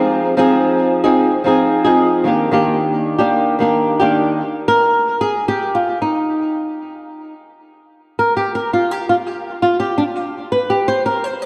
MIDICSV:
0, 0, Header, 1, 2, 480
1, 0, Start_track
1, 0, Key_signature, -3, "major"
1, 0, Tempo, 538600
1, 89, Time_signature, 4, 2, 24, 8
1, 10210, End_track
2, 0, Start_track
2, 0, Title_t, "Nylon-string guitar"
2, 0, Program_c, 0, 24
2, 0, Note_on_c, 0, 53, 78
2, 0, Note_on_c, 0, 60, 80
2, 0, Note_on_c, 0, 63, 88
2, 0, Note_on_c, 0, 68, 85
2, 317, Note_off_c, 0, 53, 0
2, 322, Note_off_c, 0, 60, 0
2, 328, Note_on_c, 0, 53, 76
2, 332, Note_on_c, 0, 60, 91
2, 337, Note_off_c, 0, 68, 0
2, 339, Note_off_c, 0, 63, 0
2, 342, Note_on_c, 0, 63, 92
2, 349, Note_on_c, 0, 68, 89
2, 914, Note_off_c, 0, 68, 0
2, 925, Note_off_c, 0, 60, 0
2, 925, Note_on_c, 0, 68, 77
2, 927, Note_off_c, 0, 63, 0
2, 929, Note_off_c, 0, 53, 0
2, 930, Note_on_c, 0, 63, 78
2, 935, Note_on_c, 0, 60, 60
2, 944, Note_on_c, 0, 53, 62
2, 1273, Note_off_c, 0, 53, 0
2, 1284, Note_on_c, 0, 53, 64
2, 1287, Note_off_c, 0, 60, 0
2, 1287, Note_off_c, 0, 68, 0
2, 1290, Note_off_c, 0, 63, 0
2, 1297, Note_on_c, 0, 60, 67
2, 1304, Note_on_c, 0, 63, 70
2, 1313, Note_on_c, 0, 68, 74
2, 1632, Note_off_c, 0, 68, 0
2, 1641, Note_off_c, 0, 63, 0
2, 1643, Note_on_c, 0, 68, 81
2, 1647, Note_off_c, 0, 53, 0
2, 1648, Note_off_c, 0, 60, 0
2, 1652, Note_on_c, 0, 63, 67
2, 1658, Note_on_c, 0, 60, 70
2, 1664, Note_on_c, 0, 53, 64
2, 1995, Note_on_c, 0, 51, 59
2, 2004, Note_off_c, 0, 60, 0
2, 2006, Note_off_c, 0, 68, 0
2, 2007, Note_on_c, 0, 58, 64
2, 2011, Note_off_c, 0, 63, 0
2, 2017, Note_off_c, 0, 53, 0
2, 2017, Note_on_c, 0, 62, 69
2, 2025, Note_on_c, 0, 67, 66
2, 2229, Note_off_c, 0, 51, 0
2, 2237, Note_off_c, 0, 58, 0
2, 2240, Note_on_c, 0, 51, 74
2, 2244, Note_off_c, 0, 62, 0
2, 2247, Note_off_c, 0, 67, 0
2, 2248, Note_on_c, 0, 58, 77
2, 2255, Note_on_c, 0, 62, 76
2, 2258, Note_on_c, 0, 67, 80
2, 2833, Note_off_c, 0, 67, 0
2, 2834, Note_off_c, 0, 62, 0
2, 2837, Note_on_c, 0, 67, 72
2, 2841, Note_off_c, 0, 58, 0
2, 2845, Note_on_c, 0, 62, 70
2, 2852, Note_on_c, 0, 58, 74
2, 2857, Note_off_c, 0, 51, 0
2, 2860, Note_on_c, 0, 51, 61
2, 3186, Note_off_c, 0, 51, 0
2, 3197, Note_on_c, 0, 51, 69
2, 3200, Note_off_c, 0, 58, 0
2, 3203, Note_off_c, 0, 67, 0
2, 3207, Note_off_c, 0, 62, 0
2, 3210, Note_on_c, 0, 58, 71
2, 3219, Note_on_c, 0, 62, 69
2, 3227, Note_on_c, 0, 67, 75
2, 3550, Note_off_c, 0, 67, 0
2, 3561, Note_off_c, 0, 62, 0
2, 3561, Note_on_c, 0, 67, 75
2, 3563, Note_off_c, 0, 51, 0
2, 3567, Note_off_c, 0, 58, 0
2, 3572, Note_on_c, 0, 62, 71
2, 3577, Note_on_c, 0, 58, 66
2, 3581, Note_on_c, 0, 51, 60
2, 3925, Note_off_c, 0, 67, 0
2, 3930, Note_off_c, 0, 62, 0
2, 3933, Note_off_c, 0, 58, 0
2, 3935, Note_off_c, 0, 51, 0
2, 4170, Note_on_c, 0, 70, 95
2, 4638, Note_off_c, 0, 70, 0
2, 4642, Note_on_c, 0, 68, 92
2, 4881, Note_off_c, 0, 68, 0
2, 4885, Note_on_c, 0, 67, 94
2, 5121, Note_on_c, 0, 65, 79
2, 5134, Note_off_c, 0, 67, 0
2, 5358, Note_off_c, 0, 65, 0
2, 5362, Note_on_c, 0, 63, 73
2, 6530, Note_off_c, 0, 63, 0
2, 7298, Note_on_c, 0, 70, 82
2, 7452, Note_off_c, 0, 70, 0
2, 7456, Note_on_c, 0, 67, 78
2, 7616, Note_off_c, 0, 67, 0
2, 7620, Note_on_c, 0, 70, 77
2, 7779, Note_off_c, 0, 70, 0
2, 7783, Note_on_c, 0, 65, 81
2, 7942, Note_off_c, 0, 65, 0
2, 7942, Note_on_c, 0, 67, 77
2, 8099, Note_off_c, 0, 67, 0
2, 8102, Note_on_c, 0, 65, 71
2, 8147, Note_off_c, 0, 65, 0
2, 8256, Note_on_c, 0, 67, 81
2, 8573, Note_off_c, 0, 67, 0
2, 8576, Note_on_c, 0, 65, 78
2, 8722, Note_off_c, 0, 65, 0
2, 8731, Note_on_c, 0, 67, 93
2, 8892, Note_on_c, 0, 62, 83
2, 8895, Note_off_c, 0, 67, 0
2, 8936, Note_off_c, 0, 62, 0
2, 9051, Note_on_c, 0, 65, 83
2, 9370, Note_off_c, 0, 65, 0
2, 9374, Note_on_c, 0, 71, 83
2, 9534, Note_on_c, 0, 67, 83
2, 9536, Note_off_c, 0, 71, 0
2, 9680, Note_off_c, 0, 67, 0
2, 9695, Note_on_c, 0, 72, 96
2, 9841, Note_off_c, 0, 72, 0
2, 9854, Note_on_c, 0, 70, 79
2, 10015, Note_off_c, 0, 70, 0
2, 10015, Note_on_c, 0, 72, 81
2, 10177, Note_off_c, 0, 72, 0
2, 10177, Note_on_c, 0, 74, 88
2, 10210, Note_off_c, 0, 74, 0
2, 10210, End_track
0, 0, End_of_file